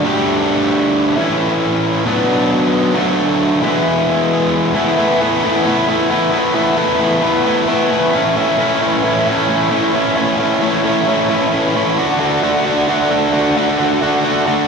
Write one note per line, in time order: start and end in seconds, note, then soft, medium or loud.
0.04 1.15 G3 medium
0.04 1.16 A3 loud
0.04 1.16 D4 loud
0.04 1.17 G4 loud
1.16 2.05 A2 medium
1.16 2.04 E3 loud
1.16 2.06 A3 medium
1.16 2.06 C#4 loud
1.16 2.06 E4 loud
2.05 2.94 B2 medium
2.05 2.94 F#3 loud
2.05 2.95 B3 loud
2.05 2.95 D4 loud
2.94 3.61 D3 medium
2.94 3.62 F#3 medium
2.94 3.62 A3 loud
2.94 3.63 D4 loud
3.61 4.73 E3 loud
3.61 4.74 G#3 medium
3.61 4.75 B3 loud
3.61 4.75 E4 loud
4.74 4.97 E3 loud
4.74 4.98 A3 loud
4.74 4.98 B3 medium
4.74 4.99 E4 loud
4.98 5.20 E3 medium
4.98 5.20 A3 loud
4.98 5.20 B3 medium
4.98 5.21 E4 medium
5.20 5.42 E3 medium
5.20 5.43 A3 medium
5.20 5.43 B3 medium
5.20 5.44 E4 loud
5.43 5.64 E3 loud
5.43 5.65 A3 loud
5.43 5.66 B3 loud
5.43 5.66 E4 loud
5.65 5.87 E3 medium
5.65 5.88 A3 medium
5.65 5.88 B3 loud
5.65 5.88 E4 loud
5.88 6.10 E3 medium
5.88 6.10 A3 loud
5.88 6.10 B3 medium
5.88 6.11 E4 loud
6.10 6.31 E3 medium
6.10 6.31 A3 medium
6.10 6.32 B3 medium
6.10 6.32 E4 medium
6.31 6.54 E3 medium
6.31 6.55 A3 medium
6.31 6.55 B3 medium
6.31 6.55 E4 medium
6.54 6.76 E3 medium
6.54 6.77 A3 loud
6.54 6.77 B3 medium
6.54 6.78 E4 loud
6.77 6.99 E3 medium
6.77 7.00 A3 medium
6.77 7.00 B3 medium
6.77 7.01 E4 medium
7.00 7.21 E3 medium
7.00 7.22 A3 medium
7.00 7.23 B3 loud
7.00 7.23 E4 loud
7.22 7.45 E3 loud
7.22 7.46 A3 medium
7.22 7.46 B3 loud
7.22 7.47 E4 loud
7.46 7.67 E3 medium
7.46 7.68 A3 loud
7.46 7.68 B3 medium
7.46 7.69 E4 medium
7.68 7.90 E3 loud
7.68 7.91 A3 loud
7.68 7.91 B3 medium
7.68 7.92 E4 loud
7.91 8.14 E3 medium
7.91 8.13 A3 medium
7.91 8.14 B3 medium
7.91 8.15 E4 medium
8.13 8.34 A2 medium
8.13 8.36 E3 medium
8.13 8.36 A3 loud
8.13 8.36 C#4 loud
8.13 8.36 E4 medium
8.35 8.57 A2 loud
8.35 8.58 E3 loud
8.35 8.58 A3 loud
8.35 8.59 C#4 loud
8.35 8.59 E4 loud
8.57 8.81 A2 medium
8.57 8.81 E3 medium
8.57 8.81 A3 medium
8.57 8.82 C#4 medium
8.57 8.82 E4 medium
8.81 9.02 A2 medium
8.81 9.03 E3 medium
8.81 9.04 A3 loud
8.81 9.04 C#4 loud
8.81 9.04 E4 loud
9.03 9.25 A2 loud
9.03 9.26 E3 loud
9.03 9.27 A3 loud
9.03 9.27 C#4 loud
9.03 9.27 E4 loud
9.26 9.48 A2 medium
9.26 9.48 E3 medium
9.26 9.49 A3 medium
9.26 9.49 C#4 loud
9.26 9.49 E4 medium
9.49 9.69 A2 medium
9.49 9.70 E3 loud
9.49 9.71 A3 loud
9.49 9.70 C#4 loud
9.49 9.71 E4 loud
9.70 9.92 A2 medium
9.70 9.93 E3 medium
9.70 9.94 A3 medium
9.70 9.93 C#4 medium
9.70 9.94 E4 medium
9.93 10.15 A2 medium
9.93 10.15 E3 medium
9.93 10.17 A3 medium
9.93 10.16 C#4 loud
9.93 10.16 E4 medium
10.16 10.37 A2 loud
10.16 10.37 E3 loud
10.16 10.39 A3 loud
10.16 10.39 C#4 loud
10.16 10.39 E4 loud
10.38 10.61 A2 medium
10.38 10.61 E3 medium
10.38 10.62 A3 medium
10.38 10.62 C#4 medium
10.38 10.62 E4 loud
10.62 10.83 A2 medium
10.62 10.84 E3 medium
10.62 10.85 A3 medium
10.62 10.85 C#4 loud
10.62 10.85 E4 medium
10.85 11.06 A2 loud
10.85 11.06 E3 medium
10.85 11.08 A3 medium
10.85 11.07 C#4 loud
10.85 11.08 E4 loud
11.07 11.28 A2 medium
11.07 11.29 E3 medium
11.07 11.30 A3 loud
11.07 11.29 C#4 loud
11.07 11.30 E4 loud
11.29 11.51 A2 medium
11.29 11.52 E3 loud
11.29 11.52 A3 loud
11.29 11.52 C#4 loud
11.29 11.53 E4 loud
11.52 11.74 A2 medium
11.52 11.74 E3 medium
11.52 11.76 A3 medium
11.52 11.75 C#4 medium
11.52 11.75 E4 medium
11.75 11.97 A2 medium
11.75 11.97 E3 medium
11.75 11.98 A3 medium
11.75 11.98 C#4 medium
11.75 11.98 E4 medium
11.98 12.18 D3 medium
11.98 12.19 A3 medium
11.98 12.20 D4 medium
11.98 12.20 F#4 loud
12.19 12.42 D3 medium
12.19 12.42 A3 medium
12.19 12.42 D4 medium
12.19 12.43 F#4 medium
12.43 12.65 D3 loud
12.43 12.65 A3 medium
12.43 12.65 D4 loud
12.43 12.66 F#4 loud
12.66 12.87 D3 loud
12.66 12.87 A3 loud
12.66 12.88 D4 loud
12.66 12.88 F#4 loud
12.88 13.09 D3 loud
12.88 13.10 A3 medium
12.88 13.10 D4 medium
12.88 13.10 F#4 medium
13.10 13.32 D3 medium
13.10 13.32 A3 loud
13.10 13.32 D4 loud
13.10 13.33 F#4 loud
13.33 13.55 D3 medium
13.33 13.56 A3 medium
13.33 13.56 D4 medium
13.33 13.56 F#4 medium
13.56 13.77 D3 medium
13.56 13.78 A3 medium
13.56 13.78 D4 medium
13.56 13.79 F#4 medium
13.79 14.00 D3 medium
13.79 14.01 A3 medium
13.79 14.01 D4 loud
13.79 14.01 F#4 loud
14.01 14.23 D3 medium
14.01 14.23 A3 medium
14.01 14.23 D4 medium
14.01 14.24 F#4 loud
14.24 14.45 D3 medium
14.24 14.45 A3 loud
14.24 14.46 D4 medium
14.24 14.46 F#4 loud
14.46 14.68 D3 loud
14.46 14.68 A3 loud
14.46 14.68 D4 loud
14.46 14.68 F#4 loud